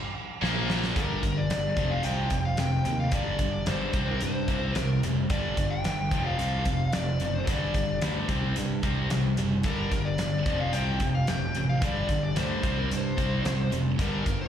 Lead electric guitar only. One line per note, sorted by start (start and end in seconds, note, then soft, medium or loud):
0.97 1.38 A#4 medium
1.37 1.93 D5 medium
1.91 2.05 F5 medium
2.05 2.45 G5 medium
2.45 2.59 F5 medium
2.59 2.99 G5 medium
3.00 3.13 F5 medium
3.13 3.52 D5 medium
3.53 3.67 D5 medium
3.67 4.09 C5 medium
4.08 4.22 A#4 medium
4.22 4.78 C5 medium
4.78 4.99 A#4 medium
5.30 5.72 D5 medium
5.70 6.25 G5 loud
6.26 6.96 F5 medium
6.93 7.35 D5 medium
7.35 7.47 C5 medium
7.47 7.98 D5 medium
9.65 10.07 A#4 medium
10.05 10.61 D5 medium
10.60 10.73 F5 medium
10.73 11.14 G5 loud
11.15 11.28 F5 medium
11.28 11.69 G5 medium
11.69 11.82 F5 medium
11.84 12.23 D5 medium
12.24 12.38 D5 medium
12.38 12.78 C5 medium
12.79 12.93 A#4 medium
12.93 13.73 C5 medium
14.02 14.38 A#4 medium
14.41 14.48 D5 medium